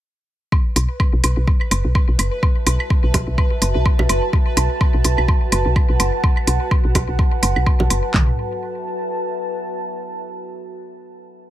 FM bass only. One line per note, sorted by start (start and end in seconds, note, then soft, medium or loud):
0.76 0.87 B1 medium
1.13 1.22 B1 medium
1.24 1.35 B1 medium
1.37 1.46 B1 medium
1.71 1.82 F#1 loud
1.85 1.93 B1 medium
2.08 2.17 B1 medium
2.19 2.30 F#1 medium
2.66 2.78 B1 loud
3.04 3.12 B1 medium
3.14 3.25 B1 medium
3.27 3.36 B1 medium
3.62 3.73 F#1 medium
3.75 3.84 B1 medium
3.99 4.08 B1 medium
4.09 4.20 F#1 medium
4.57 4.68 B1 loud
4.94 5.03 B1 medium
5.05 5.16 B1 medium
5.18 5.27 B1 medium
5.52 5.63 F#1 loud
5.66 5.74 B1 medium
5.89 5.98 B1 medium
6.00 6.11 F#1 medium
6.47 6.58 B1 loud
6.85 6.93 B1 medium
6.95 7.06 B1 medium
7.09 7.17 B1 medium
7.43 7.54 F#1 loud
7.56 7.65 B1 medium
7.80 7.89 B1 medium
7.90 8.01 F#1 medium
8.14 8.36 B1 medium